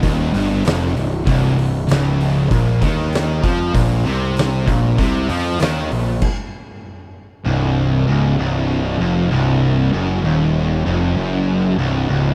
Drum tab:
CC |----------------|----------------|--------x-------|----------------|
HH |o-o-o-o-o-o-o-o-|o-o-o-o-o-o-o-o-|o-o-o-o---------|----------------|
SD |----o-------o---|---oo-------o---|----o-----------|----------------|
BD |o-------o-------|o-o---o-o-----o-|o-------o-------|----------------|

CC |----------------|
HH |----------------|
SD |----------------|
BD |----------------|